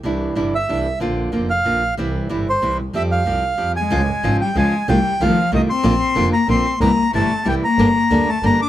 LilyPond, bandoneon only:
\new Staff \with { instrumentName = "Bandoneon" } { \time 3/4 \key c \mixolydian \tempo 4 = 187 r4. e''4. | r4. f''4. | r4. c''4 r8 | e''8 f''2 aes''8~ |
aes''4. g''8 aes''4 | g''4 f''4 ees''8 c'''8~ | c'''4. bes''8 c'''4 | bes''4 a''4 g''8 bes''8~ |
bes''4. a''8 bes''8 d'''8 | }